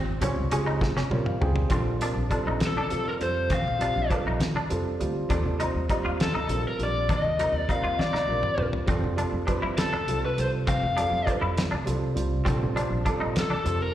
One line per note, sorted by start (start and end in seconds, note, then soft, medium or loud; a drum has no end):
0.00 0.18 G#1 medium
0.21 0.35 C#3 medium
0.21 0.43 G3 medium
0.21 0.44 C4 medium
0.21 0.39 C#4 medium
0.21 0.44 F4 medium
0.21 0.45 C#5 medium
0.21 closed hi-hat medium
0.21 low conga medium
0.36 0.50 C#2 medium
0.50 0.79 C#2 medium
0.50 0.95 C4 medium
0.50 0.61 C#4 medium
0.50 0.95 F4 medium
0.50 0.94 G4 medium
0.50 0.96 G#4 medium
0.50 closed hi-hat medium
0.66 0.84 D#4 medium
0.81 0.95 C#3 medium
0.81 kick medium
0.81 snare medium
0.81 high conga medium
0.81 low conga loud
0.97 1.14 C#4 medium
0.97 snare medium
1.10 1.25 C#3 medium
1.10 1.33 G3 medium
1.10 1.33 C4 medium
1.10 1.33 F4 medium
1.10 1.34 A#4 medium
1.10 1.26 C#5 medium
1.10 high tom medium
1.26 1.40 F5 medium
1.26 mid tom medium
1.26 low conga soft
1.40 1.69 C#2 medium
1.40 1.67 G3 medium
1.40 1.68 C4 medium
1.40 1.68 F4 medium
1.40 1.72 G#4 medium
1.40 1.69 G5 medium
1.40 mid tom medium
1.40 low conga medium
1.56 floor tom loud
1.69 2.12 A#1 medium
1.69 1.94 G3 medium
1.69 1.95 C4 medium
1.69 1.88 C4 medium
1.69 1.95 F4 medium
1.69 1.95 A4 medium
1.69 kick loud
1.69 closed hi-hat medium
1.69 high conga medium
1.98 2.22 G3 medium
1.98 2.22 C4 medium
1.98 2.19 D4 medium
1.98 2.23 F4 medium
1.98 2.23 A#4 medium
1.98 closed hi-hat medium
1.98 low conga soft
2.15 2.30 A#1 medium
2.15 low conga soft
2.29 2.74 G3 medium
2.29 2.74 C4 medium
2.29 2.40 D4 medium
2.29 2.74 F4 medium
2.29 2.75 A4 medium
2.29 kick medium
2.29 closed hi-hat medium
2.29 low conga soft
2.46 2.60 A#1 medium
2.46 2.64 D#4 medium
2.60 snare loud
2.60 closed hi-hat medium
2.60 high conga medium
2.67 3.10 A4 medium
2.76 2.94 D4 medium
2.76 muted upright bass stroke soft
2.76 low conga medium
2.89 3.05 F2 medium
2.89 3.12 G3 medium
2.89 3.12 C4 soft
2.89 3.13 F4 medium
2.89 3.13 A4 medium
2.89 closed hi-hat medium
3.07 3.13 A#4 medium
3.07 low conga soft
3.19 3.48 F2 medium
3.19 3.63 G3 medium
3.19 3.64 C4 soft
3.19 3.64 F4 medium
3.19 3.64 A4 medium
3.19 3.53 C5 medium
3.19 closed hi-hat soft
3.19 low conga soft
3.37 low conga soft
3.50 3.91 A#1 medium
3.50 3.69 C4 medium
3.50 kick medium
3.50 closed hi-hat medium
3.50 high conga medium
3.54 4.16 F5 medium
3.67 low conga medium
3.78 4.01 G3 medium
3.78 4.02 C4 medium
3.78 3.98 D4 medium
3.78 4.02 F4 soft
3.78 4.02 G4 medium
3.78 closed hi-hat medium
3.78 low conga soft
3.96 4.10 A#1 medium
3.96 low conga soft
4.09 4.53 G3 medium
4.09 4.53 C4 medium
4.09 4.20 D4 medium
4.09 4.54 F4 medium
4.09 4.54 A4 medium
4.09 kick medium
4.09 closed hi-hat medium
4.09 low conga soft
4.26 4.40 A#1 medium
4.26 4.44 D#4 medium
4.40 snare loud
4.40 closed hi-hat medium
4.40 high conga medium
4.55 4.73 D4 medium
4.55 muted upright bass stroke soft
4.55 low conga medium
4.69 4.85 F2 medium
4.69 4.92 G3 medium
4.69 4.92 C4 medium
4.69 4.92 F4 medium
4.69 4.92 A4 medium
4.69 closed hi-hat medium
4.85 low conga soft
4.99 5.28 D2 medium
4.99 5.27 G3 medium
4.99 5.29 C4 medium
4.99 5.29 F4 medium
4.99 5.31 G4 medium
4.99 closed hi-hat soft
4.99 low conga soft
5.15 low conga soft
5.29 5.71 D#2 medium
5.29 5.54 G3 medium
5.29 5.54 C4 medium
5.29 5.48 D4 medium
5.29 5.54 F4 medium
5.29 5.55 A4 medium
5.29 kick medium
5.29 closed hi-hat medium
5.29 high conga medium
5.45 low conga medium
5.59 5.81 G3 medium
5.59 5.81 C4 medium
5.59 5.77 D#4 medium
5.59 5.82 F4 medium
5.59 5.82 C5 medium
5.59 closed hi-hat medium
5.59 low conga soft
5.74 5.88 D#2 medium
5.74 low conga soft
5.89 6.33 G3 medium
5.89 6.33 C4 medium
5.89 5.99 D#4 medium
5.89 6.34 F4 medium
5.89 6.34 G4 medium
5.89 kick medium
5.89 closed hi-hat medium
5.89 low conga soft
6.05 6.18 D#2 medium
6.05 6.22 F4 medium
6.20 6.63 A4 medium
6.20 snare loud
6.20 closed hi-hat medium
6.20 high conga medium
6.34 6.52 D#4 medium
6.34 muted upright bass stroke soft
6.34 low conga medium
6.48 6.63 A#1 medium
6.48 6.71 G3 medium
6.48 6.71 C4 medium
6.48 6.72 F4 medium
6.48 6.72 A#4 medium
6.48 closed hi-hat medium
6.66 6.82 A#4 medium
6.66 low conga soft
6.78 7.06 A#1 medium
6.78 7.22 G3 medium
6.78 7.22 C4 soft
6.78 7.23 F4 soft
6.78 7.23 G4 medium
6.78 closed hi-hat medium
6.78 low conga soft
6.83 7.12 D5 medium
6.95 low conga soft
7.09 7.50 D#2 medium
7.09 7.26 D4 medium
7.09 kick loud
7.09 closed hi-hat medium
7.09 high conga loud
7.13 7.56 D#5 medium
7.24 low conga medium
7.38 7.60 G3 medium
7.38 7.61 C4 medium
7.38 7.57 D#4 medium
7.38 7.61 F4 medium
7.38 7.61 A#4 medium
7.38 closed hi-hat medium
7.52 7.67 D#2 medium
7.52 7.71 D5 medium
7.68 8.12 G3 medium
7.68 8.12 C4 medium
7.68 7.78 D#4 medium
7.68 8.13 F4 medium
7.68 8.13 A#4 medium
7.68 7.98 F5 medium
7.68 kick medium
7.68 closed hi-hat medium
7.83 7.97 D#2 medium
7.83 8.01 F4 medium
7.99 8.63 D5 medium
7.99 snare soft
7.99 high conga medium
7.99 low conga soft
8.13 8.30 D#4 medium
8.13 muted upright bass stroke soft
8.13 snare soft
8.13 low conga medium
8.27 8.42 A#1 medium
8.27 8.50 G3 soft
8.27 8.50 C4 soft
8.27 8.50 F4 soft
8.27 8.51 A#4 medium
8.43 mid tom medium
8.43 low conga soft
8.57 8.85 A#1 medium
8.57 8.85 G3 medium
8.57 8.85 C4 soft
8.57 8.86 F4 soft
8.57 8.89 A#4 medium
8.57 mid tom medium
8.73 floor tom medium
8.86 9.29 F2 medium
8.86 9.11 G3 medium
8.86 9.12 C4 medium
8.86 9.05 C4 medium
8.86 9.12 F4 medium
8.86 9.12 A4 medium
8.86 kick loud
8.86 closed hi-hat medium
8.86 high conga medium
9.04 low conga medium
9.16 9.39 G3 medium
9.16 9.39 C4 medium
9.16 9.35 D4 medium
9.16 9.39 F4 medium
9.16 9.40 A4 medium
9.16 closed hi-hat medium
9.16 low conga soft
9.32 9.47 F2 medium
9.32 low conga soft
9.47 9.91 G3 medium
9.47 9.91 C4 medium
9.47 9.56 D4 medium
9.47 9.91 F4 medium
9.47 9.92 B4 medium
9.47 kick medium
9.47 closed hi-hat medium
9.47 low conga soft
9.62 9.76 F2 medium
9.62 9.80 E4 medium
9.78 10.25 A4 medium
9.78 snare loud
9.78 closed hi-hat medium
9.78 high conga medium
9.92 10.10 D4 medium
9.92 muted upright bass stroke soft
9.92 low conga medium
10.07 10.21 C2 medium
10.07 10.29 G3 medium
10.07 10.30 C4 soft
10.07 10.30 F4 medium
10.07 10.30 A4 medium
10.07 closed hi-hat medium
10.24 10.38 B4 medium
10.24 low conga soft
10.37 10.65 C2 medium
10.37 10.81 G3 medium
10.37 10.81 C4 soft
10.37 10.81 F4 soft
10.37 10.82 A4 medium
10.37 10.48 C5 medium
10.37 closed hi-hat medium
10.37 low conga soft
10.54 low conga soft
10.67 11.08 F2 medium
10.67 10.84 C4 medium
10.67 11.31 F5 medium
10.67 kick medium
10.67 closed hi-hat medium
10.67 high conga medium
10.83 low conga medium
10.96 11.19 G3 medium
10.96 11.19 C4 medium
10.96 11.14 D4 medium
10.96 11.19 F4 medium
10.96 11.20 A4 medium
10.96 closed hi-hat medium
10.96 low conga soft
11.12 11.26 F2 medium
11.12 low conga soft
11.25 11.70 G3 medium
11.25 11.70 C4 medium
11.25 11.36 D4 medium
11.25 11.70 F4 medium
11.25 11.70 A4 medium
11.25 kick medium
11.25 closed hi-hat medium
11.25 low conga soft
11.41 11.56 F2 medium
11.41 11.59 E4 medium
11.57 snare loud
11.57 closed hi-hat medium
11.57 high conga medium
11.71 11.88 D4 medium
11.71 muted upright bass stroke soft
11.71 low conga medium
11.85 12.00 C2 medium
11.85 12.08 G3 medium
11.85 12.08 C4 medium
11.85 12.08 F4 medium
11.85 12.09 A4 medium
11.85 closed hi-hat medium
12.03 low conga soft
12.15 12.44 C2 medium
12.15 12.43 G3 medium
12.15 12.44 C4 medium
12.15 12.45 F4 medium
12.15 12.47 G4 medium
12.15 closed hi-hat medium
12.15 low conga soft
12.33 low conga soft
12.44 12.87 A#1 medium
12.44 12.70 G3 medium
12.44 12.63 C4 medium
12.44 12.70 C4 medium
12.44 12.70 F4 medium
12.44 12.71 A4 medium
12.44 kick loud
12.44 closed hi-hat medium
12.44 high conga medium
12.63 low conga medium
12.75 12.97 G3 medium
12.75 12.97 C4 medium
12.75 12.93 D4 medium
12.75 12.98 F4 medium
12.75 12.98 C5 medium
12.75 closed hi-hat medium
12.75 low conga soft
12.90 13.04 A#1 medium
12.90 low conga soft
13.05 13.49 G3 medium
13.05 13.49 C4 medium
13.05 13.14 D4 medium
13.05 13.49 F4 medium
13.05 13.50 A4 medium
13.05 kick medium
13.05 closed hi-hat medium
13.05 low conga soft
13.20 13.34 A#1 medium
13.20 13.38 D#4 medium
13.36 snare loud
13.36 closed hi-hat medium
13.36 high conga medium
13.40 13.80 A4 medium
13.49 13.68 D4 medium
13.49 muted upright bass stroke soft
13.49 low conga medium
13.64 13.79 F2 medium
13.64 13.87 G3 medium
13.64 13.87 C4 medium
13.64 13.87 F4 medium
13.64 13.88 A4 medium
13.64 closed hi-hat medium
13.82 13.94 A#4 medium
13.82 low conga soft